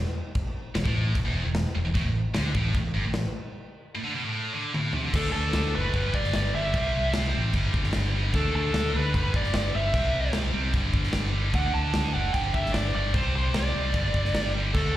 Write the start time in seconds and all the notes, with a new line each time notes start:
0.35 kick, crash
0.75 E1 E2, snare, crash
0.84 A1 A2, kick
1.15 E1 E2, kick, crash
1.25 E1 E2
1.45 E1 E2
1.55 snare, crash
1.76 E1 E2
1.85 E1 E2
1.94 A1 A2, kick, crash
2.04 A1 A2
2.34 D2 D3, snare, crash
2.54 A1 A2, kick
2.75 A1 A2, kick, crash
2.94 G1 G2
3.05 A1 A2
3.14 snare, crash
3.95 A2
4.04 D3
4.15 B2
4.25 A2
4.54 D3
4.74 A2, high tom
4.93 C3, floor tom
5.05 D3
5.13 D2 D3 A3 D4 A4, kick, crash
5.32 D2 A4
5.53 D2, snare, crash
5.75 F#1 D3 A3 D4 B4
5.94 G1 G2 D3, kick, crash
5.98 G3
6.14 G1 D5, kick
6.24 snare
6.34 G1 D5, snare, crash
6.55 G1 G2 D3 G3 E5
6.74 C2 C3 G3 C4, kick, crash
6.96 C2
7.14 C2, snare, crash
7.34 A1 C3 G3 C4
7.53 G1 G2 D3, kick, crash
7.58 G3
7.74 G1, kick
7.84 snare
7.93 G1, snare, crash
8.14 G2 D3 G3
8.33 D2 D3 A3 A4, kick, crash
8.38 D4
8.55 D2 A4
8.74 D2, snare, crash
8.94 D2 A3 D4 B4
8.98 D3
9.13 G1 G2 D3 G3 B4, kick, crash
9.34 G1 D5, kick
9.44 snare
9.54 G1 D5, snare, crash
9.74 G1 G2 D3 G3 E5
9.94 C2 C3 G3 C4, kick, crash
10.14 C2
10.33 C2, snare, crash
10.53 C2 C3 G3 C4
10.73 G1 G2 D3 G3, kick, crash
10.93 G1, kick
11.04 snare
11.13 G1, snare, crash
11.33 G2 D3 G3
11.53 D2 D3 A3 F#5, kick, crash
11.58 D4
11.74 D2 A5
11.94 D2, snare, crash
12.14 F#1 D3 A3 D4 F#5
12.33 G1 G2 D3 G5, kick, crash
12.37 G3
12.54 G1 E5, kick
12.65 snare
12.73 G1 D5, snare, crash
12.94 G1 G2 D3 G3 D5
13.14 C2 C3 G3 C5, kick, crash
13.18 C4
13.34 C2 C5
13.54 C2 D5, snare, crash
13.75 C2 C3 G3 C4
13.93 G1 G2 D3 G3, kick, crash
14.14 G1, kick
14.25 snare
14.35 G1, snare, crash
14.55 D3 G3
14.59 G2
14.74 D2 D3 A3 A4, kick, crash
14.78 D4